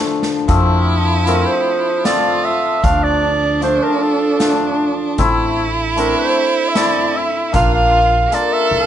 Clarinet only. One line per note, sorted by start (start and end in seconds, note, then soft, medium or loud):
1.27 1.48 A#4 medium
1.47 2.05 C5 medium
2.05 2.46 D5 medium
2.44 2.85 E5 medium
2.84 3.05 F5 loud
3.03 3.62 D5 loud
3.63 3.85 C5 medium
3.83 4.04 A#4 medium
4.03 4.80 A4 medium
5.98 6.16 A#4 medium
6.18 6.70 C5 medium
6.69 6.78 E5 medium
6.77 7.18 D5 medium
7.16 7.54 E5 medium
7.55 7.73 F5 loud
7.74 8.36 F5 loud
8.34 8.55 D5 medium
8.53 8.75 E5 medium
8.73 8.86 F5 loud